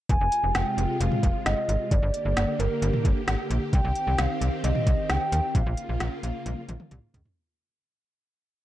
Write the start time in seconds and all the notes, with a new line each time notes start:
0.09 F1 C3 G#3 F4 G#5, kick, closed hi-hat
0.21 F1
0.32 closed hi-hat
0.44 F1
0.55 F1 G5, snare, closed hi-hat
0.78 F1, closed hi-hat
1.00 F1 F5, closed hi-hat
1.12 mid tom
1.23 F1, kick, closed hi-hat
1.46 G1 D#5, snare, closed hi-hat
1.69 G#1, closed hi-hat
1.91 G1 D3 A#3 G4 D5, kick, closed hi-hat
2.03 G1
2.14 closed hi-hat
2.25 G1
2.37 G1, snare, closed hi-hat
2.59 G1 A#4, closed hi-hat
2.82 G1, closed hi-hat
2.93 mid tom
3.05 G1, kick, closed hi-hat
3.28 G#1, snare, closed hi-hat
3.50 A#1, closed hi-hat
3.73 C2 D#3 C4 G5, kick, closed hi-hat
3.84 C2
3.95 closed hi-hat
4.07 C2
4.18 C2 F5, snare, closed hi-hat
4.41 C2, closed hi-hat
4.64 C2 D#5, closed hi-hat
4.75 mid tom
4.87 C2, kick, closed hi-hat
5.09 C#2 G5, snare, closed hi-hat
5.32 D#2, closed hi-hat
5.55 A#1 C#3 A#3 F4 F5, kick, closed hi-hat
5.66 A#1
5.77 closed hi-hat
5.89 A#1
6.00 A#1, snare, closed hi-hat
6.23 A#1 F5, closed hi-hat
6.46 A#1, closed hi-hat, high tom
6.69 A#1, closed hi-hat, mid tom
6.80 mid tom
6.91 C2, closed hi-hat, mid tom
7.14 C#2, closed hi-hat, floor tom
7.25 floor tom